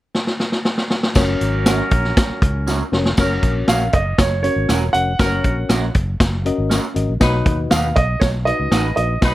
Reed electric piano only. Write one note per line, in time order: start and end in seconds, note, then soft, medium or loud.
1.15 1.84 C#4 medium
1.15 1.84 F#4 medium
1.15 1.84 A#4 medium
1.15 1.85 C#5 medium
2.92 3.09 C#4 medium
2.92 3.09 F#4 medium
2.92 3.10 A#4 medium
2.92 3.10 C#5 medium
3.18 3.86 C#4 medium
3.18 3.86 F#4 medium
3.18 3.86 A#4 medium
3.18 3.87 C#5 medium
4.44 4.78 C#4 medium
4.44 4.78 F#4 medium
4.44 4.78 A#4 medium
4.44 4.79 C#5 medium
4.94 5.11 C#4 soft
4.94 5.11 F#4 soft
4.94 5.12 A#4 soft
4.94 5.12 C#5 medium
5.19 5.87 C#4 medium
5.19 5.88 F#4 medium
5.19 5.88 A#4 medium
5.19 5.26 B4 medium
5.26 5.91 C#5 medium
6.45 6.80 C#4 medium
6.45 6.80 F#4 medium
6.45 6.80 A#4 medium
6.45 6.80 D#5 loud
6.95 7.12 C#4 medium
6.95 7.13 F#4 medium
6.95 7.13 A#4 medium
6.95 7.13 D#5 medium
7.20 7.92 B2 medium
7.20 7.89 D#4 medium
7.20 7.89 F#4 medium
7.20 7.89 B4 medium
7.20 7.90 D#5 medium
8.46 8.81 D#4 medium
8.46 8.81 F#4 medium
8.46 8.81 B4 medium
8.46 8.81 D#5 medium
8.96 9.14 D#4 soft
8.96 9.14 F#4 soft
8.96 9.14 B4 medium
8.96 9.14 D#5 medium
9.21 9.34 B2 medium
9.21 9.34 D#4 medium
9.21 9.34 F#4 medium
9.21 9.34 B4 medium
9.21 9.34 D#5 medium